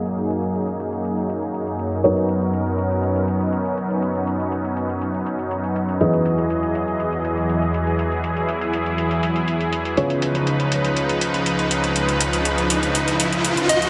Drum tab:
HH |xxxxxxxxxxxxxxxx|xxxxxxxxxxxxxxxx|xxxxxxxxxxxxxxxx|xxxxxxxxxxxxxxxx|

HH |xxxxxxxxxxxxxxxx|xxxxxxxxxxxxxxxx|xxxxxxxxxxxxxxxx|